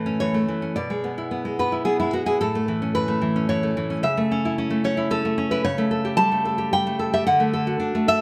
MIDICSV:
0, 0, Header, 1, 2, 480
1, 0, Start_track
1, 0, Key_signature, 3, "major"
1, 0, Tempo, 551978
1, 656, Time_signature, 3, 2, 24, 8
1, 3046, Tempo, 541028
1, 7225, End_track
2, 0, Start_track
2, 0, Title_t, "Nylon-string guitar"
2, 0, Program_c, 0, 24
2, 0, Note_on_c, 0, 45, 62
2, 0, Note_on_c, 0, 52, 46
2, 0, Note_on_c, 0, 57, 49
2, 0, Note_on_c, 0, 71, 77
2, 52, Note_on_c, 0, 61, 62
2, 152, Note_off_c, 0, 71, 0
2, 170, Note_off_c, 0, 52, 0
2, 175, Note_on_c, 0, 73, 87
2, 181, Note_on_c, 0, 52, 55
2, 287, Note_off_c, 0, 57, 0
2, 298, Note_on_c, 0, 57, 51
2, 411, Note_off_c, 0, 52, 0
2, 418, Note_off_c, 0, 45, 0
2, 421, Note_on_c, 0, 52, 52
2, 530, Note_off_c, 0, 61, 0
2, 541, Note_on_c, 0, 61, 53
2, 639, Note_off_c, 0, 73, 0
2, 658, Note_on_c, 0, 74, 82
2, 659, Note_off_c, 0, 57, 0
2, 659, Note_off_c, 0, 61, 0
2, 660, Note_off_c, 0, 52, 0
2, 666, Note_on_c, 0, 47, 61
2, 783, Note_on_c, 0, 56, 51
2, 903, Note_on_c, 0, 59, 55
2, 1024, Note_on_c, 0, 64, 54
2, 1129, Note_off_c, 0, 59, 0
2, 1140, Note_on_c, 0, 59, 56
2, 1250, Note_off_c, 0, 56, 0
2, 1260, Note_on_c, 0, 56, 53
2, 1351, Note_off_c, 0, 74, 0
2, 1375, Note_off_c, 0, 59, 0
2, 1383, Note_on_c, 0, 59, 56
2, 1386, Note_on_c, 0, 71, 78
2, 1485, Note_off_c, 0, 64, 0
2, 1496, Note_on_c, 0, 64, 58
2, 1602, Note_off_c, 0, 59, 0
2, 1604, Note_off_c, 0, 71, 0
2, 1608, Note_on_c, 0, 68, 91
2, 1612, Note_on_c, 0, 59, 57
2, 1723, Note_off_c, 0, 64, 0
2, 1726, Note_off_c, 0, 56, 0
2, 1728, Note_off_c, 0, 68, 0
2, 1736, Note_on_c, 0, 56, 56
2, 1736, Note_on_c, 0, 64, 72
2, 1846, Note_off_c, 0, 59, 0
2, 1851, Note_off_c, 0, 64, 0
2, 1855, Note_on_c, 0, 59, 53
2, 1855, Note_on_c, 0, 66, 82
2, 1961, Note_off_c, 0, 66, 0
2, 1964, Note_on_c, 0, 64, 55
2, 1968, Note_on_c, 0, 68, 89
2, 2061, Note_off_c, 0, 47, 0
2, 2088, Note_off_c, 0, 64, 0
2, 2089, Note_off_c, 0, 68, 0
2, 2093, Note_off_c, 0, 56, 0
2, 2093, Note_off_c, 0, 59, 0
2, 2093, Note_on_c, 0, 69, 83
2, 2098, Note_on_c, 0, 45, 67
2, 2219, Note_on_c, 0, 57, 58
2, 2331, Note_on_c, 0, 52, 59
2, 2451, Note_on_c, 0, 61, 61
2, 2551, Note_off_c, 0, 69, 0
2, 2552, Note_off_c, 0, 52, 0
2, 2563, Note_on_c, 0, 52, 58
2, 2563, Note_on_c, 0, 71, 91
2, 2667, Note_off_c, 0, 57, 0
2, 2677, Note_on_c, 0, 57, 61
2, 2785, Note_off_c, 0, 52, 0
2, 2796, Note_on_c, 0, 52, 55
2, 2909, Note_off_c, 0, 61, 0
2, 2919, Note_on_c, 0, 61, 64
2, 3022, Note_off_c, 0, 71, 0
2, 3024, Note_off_c, 0, 52, 0
2, 3034, Note_on_c, 0, 52, 65
2, 3034, Note_on_c, 0, 73, 90
2, 3149, Note_off_c, 0, 57, 0
2, 3160, Note_on_c, 0, 57, 59
2, 3271, Note_off_c, 0, 52, 0
2, 3281, Note_on_c, 0, 52, 62
2, 3388, Note_off_c, 0, 61, 0
2, 3399, Note_on_c, 0, 61, 57
2, 3495, Note_off_c, 0, 45, 0
2, 3502, Note_off_c, 0, 73, 0
2, 3513, Note_on_c, 0, 49, 70
2, 3517, Note_on_c, 0, 76, 94
2, 3523, Note_off_c, 0, 57, 0
2, 3523, Note_off_c, 0, 61, 0
2, 3524, Note_off_c, 0, 52, 0
2, 3642, Note_on_c, 0, 57, 62
2, 3767, Note_on_c, 0, 61, 69
2, 3888, Note_on_c, 0, 64, 68
2, 3993, Note_off_c, 0, 61, 0
2, 4003, Note_on_c, 0, 61, 59
2, 4101, Note_off_c, 0, 57, 0
2, 4112, Note_on_c, 0, 57, 64
2, 4214, Note_off_c, 0, 76, 0
2, 4224, Note_off_c, 0, 61, 0
2, 4235, Note_on_c, 0, 61, 56
2, 4239, Note_on_c, 0, 73, 85
2, 4339, Note_off_c, 0, 64, 0
2, 4349, Note_on_c, 0, 64, 67
2, 4458, Note_off_c, 0, 61, 0
2, 4468, Note_on_c, 0, 61, 63
2, 4470, Note_off_c, 0, 73, 0
2, 4472, Note_on_c, 0, 69, 101
2, 4585, Note_off_c, 0, 57, 0
2, 4596, Note_on_c, 0, 57, 63
2, 4698, Note_off_c, 0, 61, 0
2, 4709, Note_on_c, 0, 61, 66
2, 4818, Note_off_c, 0, 69, 0
2, 4821, Note_off_c, 0, 64, 0
2, 4827, Note_on_c, 0, 71, 95
2, 4832, Note_on_c, 0, 64, 70
2, 4915, Note_off_c, 0, 49, 0
2, 4943, Note_off_c, 0, 64, 0
2, 4947, Note_on_c, 0, 49, 82
2, 4947, Note_on_c, 0, 73, 102
2, 4951, Note_off_c, 0, 61, 0
2, 4951, Note_off_c, 0, 71, 0
2, 4953, Note_off_c, 0, 57, 0
2, 5066, Note_on_c, 0, 57, 63
2, 5181, Note_on_c, 0, 69, 73
2, 5303, Note_on_c, 0, 67, 66
2, 5407, Note_off_c, 0, 73, 0
2, 5411, Note_on_c, 0, 81, 121
2, 5416, Note_on_c, 0, 55, 69
2, 5532, Note_off_c, 0, 57, 0
2, 5543, Note_on_c, 0, 57, 65
2, 5653, Note_off_c, 0, 69, 0
2, 5663, Note_on_c, 0, 69, 64
2, 5766, Note_off_c, 0, 67, 0
2, 5776, Note_on_c, 0, 67, 73
2, 5884, Note_off_c, 0, 81, 0
2, 5896, Note_off_c, 0, 55, 0
2, 5906, Note_on_c, 0, 55, 66
2, 5908, Note_on_c, 0, 79, 115
2, 6019, Note_off_c, 0, 57, 0
2, 6030, Note_on_c, 0, 57, 65
2, 6133, Note_off_c, 0, 69, 0
2, 6143, Note_on_c, 0, 69, 72
2, 6253, Note_off_c, 0, 79, 0
2, 6259, Note_off_c, 0, 67, 0
2, 6269, Note_on_c, 0, 67, 70
2, 6269, Note_on_c, 0, 76, 113
2, 6351, Note_off_c, 0, 49, 0
2, 6381, Note_off_c, 0, 76, 0
2, 6384, Note_on_c, 0, 78, 105
2, 6387, Note_off_c, 0, 55, 0
2, 6387, Note_off_c, 0, 69, 0
2, 6389, Note_off_c, 0, 57, 0
2, 6390, Note_off_c, 0, 67, 0
2, 6390, Note_on_c, 0, 50, 84
2, 6503, Note_on_c, 0, 57, 64
2, 6623, Note_on_c, 0, 69, 86
2, 6742, Note_on_c, 0, 66, 67
2, 6852, Note_off_c, 0, 50, 0
2, 6855, Note_on_c, 0, 62, 66
2, 6979, Note_off_c, 0, 57, 0
2, 6990, Note_on_c, 0, 57, 63
2, 7092, Note_off_c, 0, 78, 0
2, 7096, Note_off_c, 0, 69, 0
2, 7106, Note_on_c, 0, 69, 70
2, 7109, Note_on_c, 0, 76, 113
2, 7217, Note_off_c, 0, 66, 0
2, 7225, Note_off_c, 0, 57, 0
2, 7225, Note_off_c, 0, 62, 0
2, 7225, Note_off_c, 0, 69, 0
2, 7225, Note_off_c, 0, 76, 0
2, 7225, End_track
0, 0, End_of_file